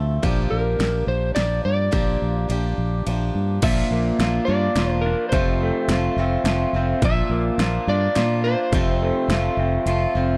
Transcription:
0.00 0.17 D2 medium
0.00 0.23 F3 medium
0.00 0.23 A3 medium
0.00 0.24 C4 medium
0.00 0.24 A4 medium
0.23 0.46 A#1 medium
0.23 0.80 A#2 medium
0.23 0.78 F3 medium
0.23 0.80 A#3 medium
0.23 0.80 D4 medium
0.23 0.80 G4 medium
0.23 kick medium
0.23 ride medium
0.50 0.75 A#1 medium
0.50 1.08 A#4 medium
0.79 1.02 A#1 medium
0.79 1.34 F3 soft
0.79 1.36 A#3 soft
0.79 1.37 D4 medium
0.79 1.36 G4 medium
0.79 snare medium
0.79 ride medium
1.07 1.31 A#1 medium
1.07 1.34 C5 medium
1.35 1.59 A#1 medium
1.35 1.91 F3 medium
1.35 1.92 A#3 medium
1.35 1.93 D4 medium
1.35 1.92 G4 medium
1.35 1.62 D5 medium
1.35 snare medium
1.35 ride medium
1.65 1.88 G2 medium
1.65 3.03 D5 medium
1.91 2.16 A#1 medium
1.91 2.49 A#2 medium
1.91 2.47 F3 medium
1.91 2.49 A#3 medium
1.91 2.50 D4 medium
1.91 2.50 G4 medium
1.91 kick medium
1.91 ride medium
2.22 2.45 A#1 medium
2.49 2.73 A#1 medium
2.49 3.05 F3 medium
2.49 3.06 A#3 medium
2.49 3.07 D4 medium
2.49 3.08 G4 medium
2.49 ride medium
2.78 3.01 A#1 medium
3.06 3.30 A#1 medium
3.06 3.62 F3 medium
3.06 3.62 A#3 medium
3.06 3.63 D4 medium
3.06 3.63 G4 medium
3.06 ride medium
3.35 3.58 G2 medium
3.62 3.82 A#1 medium
3.62 4.20 A#2 medium
3.62 4.19 F3 medium
3.62 4.18 A#3 medium
3.62 4.20 D4 medium
3.62 4.21 F4 medium
3.62 4.45 E5 medium
3.62 kick loud
3.62 closed hi-hat medium
3.62 crash medium
3.91 4.10 A#1 medium
3.91 5.34 A#3 medium
4.19 4.38 A#1 medium
4.19 4.48 F3 medium
4.19 4.48 A#3 soft
4.19 4.47 D4 medium
4.19 4.45 F4 medium
4.19 snare medium
4.19 closed hi-hat medium
4.45 4.67 G2 medium
4.45 4.75 A#3 soft
4.45 4.77 D4 soft
4.45 4.76 F4 soft
4.45 4.92 D5 medium
4.75 5.13 E1 medium
4.75 5.33 F3 medium
4.75 5.33 A#3 medium
4.75 5.33 D4 medium
4.75 5.33 F4 medium
4.75 snare medium
4.75 closed hi-hat medium
4.92 5.05 C5 medium
5.01 5.29 A#4 medium
5.06 5.34 D4 medium
5.29 5.70 F1 medium
5.29 5.89 F2 medium
5.29 5.89 C3 medium
5.29 5.88 F3 medium
5.29 6.69 C5 medium
5.29 kick medium
5.29 closed hi-hat medium
5.33 5.89 A3 medium
5.33 5.90 C4 medium
5.33 5.91 F4 medium
5.63 7.04 A3 medium
5.88 6.08 F1 medium
5.88 6.18 F3 medium
5.88 6.18 A3 medium
5.88 6.17 C4 medium
5.88 6.17 F4 medium
5.88 snare medium
5.88 closed hi-hat medium
6.16 6.36 F1 medium
6.16 6.45 F3 soft
6.16 6.45 A3 soft
6.16 6.46 C4 soft
6.16 6.47 F4 medium
6.44 6.64 F1 medium
6.44 6.75 F3 medium
6.44 6.75 A3 medium
6.44 6.74 C4 medium
6.44 snare medium
6.44 closed hi-hat medium
6.49 6.73 F4 medium
6.73 6.93 F1 medium
6.73 7.02 F3 soft
6.73 7.02 A3 medium
6.73 7.03 C4 soft
6.73 7.03 F4 soft
7.02 7.21 A#1 medium
7.02 7.59 A#2 medium
7.02 7.59 F3 medium
7.02 7.59 A#3 medium
7.02 7.60 D4 medium
7.02 7.62 F4 medium
7.02 7.89 E5 loud
7.02 kick loud
7.02 closed hi-hat medium
7.29 7.49 A#1 medium
7.29 8.73 A#3 medium
7.58 7.77 A#1 medium
7.58 7.88 F3 medium
7.58 7.89 A#3 medium
7.58 7.88 D4 medium
7.58 snare medium
7.58 closed hi-hat medium
7.62 7.87 F4 medium
7.87 8.07 G2 medium
7.87 8.15 A#3 soft
7.87 8.16 D4 soft
7.87 8.17 F4 medium
7.87 8.43 D5 medium
8.15 8.54 A#2 medium
8.15 8.45 F3 medium
8.15 8.45 A#3 medium
8.15 8.44 D4 medium
8.15 8.43 F4 medium
8.15 snare medium
8.15 closed hi-hat medium
8.44 8.74 A#3 soft
8.44 8.73 D4 soft
8.44 8.73 F4 medium
8.44 9.82 C5 medium
8.72 9.10 F1 medium
8.72 9.30 F2 medium
8.72 9.30 C3 medium
8.72 9.29 F3 medium
8.72 9.30 A3 medium
8.72 9.31 C4 medium
8.72 9.31 F4 medium
8.72 kick medium
8.72 closed hi-hat medium
9.03 10.38 A3 medium
9.28 9.48 F1 medium
9.28 9.86 F3 medium
9.28 9.87 A3 medium
9.28 snare medium
9.28 closed hi-hat medium
9.33 9.88 C4 medium
9.33 9.88 F4 medium
9.57 9.76 F1 medium
9.57 10.16 C4 medium
9.86 10.05 F1 medium
9.86 10.15 F3 medium
9.86 10.16 A3 medium
9.86 10.15 C4 medium
9.86 10.14 F4 medium
9.86 closed hi-hat medium
10.15 10.34 F1 medium
10.15 10.38 F3 soft
10.15 10.38 A3 soft
10.15 10.38 C4 soft
10.15 10.38 F4 medium

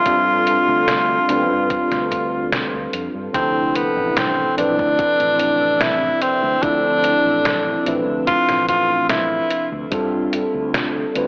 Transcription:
0.00 3.33 F3 medium
0.00 0.06 C4 medium
0.00 0.06 D4 medium
0.00 2.52 F4 loud
0.00 3.31 A4 medium
0.00 1.31 B4 medium
0.05 0.56 G2 loud
0.05 1.24 G3 medium
0.05 1.24 C4 medium
0.05 1.24 D4 medium
0.05 1.25 F4 medium
0.05 1.25 A4 loud
0.05 kick loud
0.05 closed hi-hat medium
0.47 closed hi-hat medium
0.68 1.18 D2 loud
0.88 snare loud
0.88 closed hi-hat medium
1.28 1.50 D2 loud
1.28 3.29 G3 medium
1.28 3.30 C4 medium
1.28 3.30 D4 medium
1.28 3.30 F4 medium
1.28 3.31 B4 medium
1.28 closed hi-hat medium
1.50 1.76 G2 medium
1.70 kick loud
1.70 closed hi-hat medium
1.91 2.73 D2 medium
1.91 snare soft
1.91 closed hi-hat soft
2.11 kick medium
2.11 closed hi-hat medium
2.53 snare loud
2.53 closed hi-hat medium
2.74 2.86 D2 medium
2.94 3.07 F2 medium
2.94 closed hi-hat medium
3.15 3.28 G2 medium
3.33 3.85 D2 loud
3.33 4.53 C3 medium
3.33 9.88 C3 medium
3.33 4.52 F3 loud
3.33 3.77 C4 medium
3.33 4.53 D4 medium
3.33 4.53 E4 medium
3.33 4.54 A4 loud
3.33 9.88 E6 medium
3.33 kick loud
3.33 closed hi-hat medium
3.76 4.18 B3 medium
3.76 closed hi-hat medium
3.97 4.46 A1 loud
4.17 4.57 C4 medium
4.17 snare loud
4.17 closed hi-hat medium
4.56 4.79 A1 loud
4.56 6.58 F3 medium
4.56 6.58 C4 medium
4.56 5.83 D4 loud
4.56 6.59 D4 medium
4.56 6.59 E4 medium
4.56 6.59 B4 medium
4.56 closed hi-hat medium
4.79 4.98 D2 medium
4.79 kick loud
4.99 muted fretless electric bass stroke soft
4.99 kick loud
4.99 closed hi-hat medium
5.20 6.11 A1 medium
5.20 closed hi-hat soft
5.39 closed hi-hat medium
5.81 6.24 E4 loud
5.81 snare loud
5.81 closed hi-hat medium
6.22 6.65 C4 medium
6.22 closed hi-hat medium
6.43 6.56 D2 loud
6.62 7.13 D2 loud
6.62 7.81 F3 loud
6.62 7.82 C4 medium
6.62 8.01 D4 loud
6.62 7.82 D4 medium
6.62 7.82 E4 medium
6.62 7.83 A4 loud
6.62 kick loud
6.62 closed hi-hat medium
7.04 closed hi-hat medium
7.25 7.75 A1 loud
7.45 snare loud
7.45 closed hi-hat medium
7.86 8.08 A1 loud
7.86 9.87 F3 medium
7.86 9.87 C4 medium
7.86 9.87 D4 medium
7.86 9.88 B4 medium
7.86 9.88 E5 medium
7.86 closed hi-hat medium
8.08 8.34 D2 medium
8.27 8.66 F4 loud
8.27 kick loud
8.27 closed hi-hat medium
8.49 9.40 A1 medium
8.49 snare soft
8.49 closed hi-hat soft
8.69 9.07 F4 loud
8.69 kick medium
8.69 closed hi-hat medium
9.10 9.68 E4 loud
9.10 snare loud
9.10 closed hi-hat medium
9.51 closed hi-hat medium
9.73 9.85 D2 loud
9.91 10.42 G2 loud
9.91 11.10 G3 loud
9.91 11.10 C4 medium
9.91 11.11 D4 medium
9.91 11.11 F4 medium
9.91 11.27 A4 medium
9.91 11.11 A4 loud
9.91 kick loud
9.91 closed hi-hat medium
10.33 closed hi-hat medium
10.54 11.04 D2 loud
10.74 snare loud
10.74 closed hi-hat medium
11.14 11.27 D2 loud
11.14 11.27 G3 medium
11.14 11.27 C4 medium
11.14 11.27 D4 medium
11.14 11.27 F4 medium
11.14 11.27 B4 medium
11.14 closed hi-hat medium

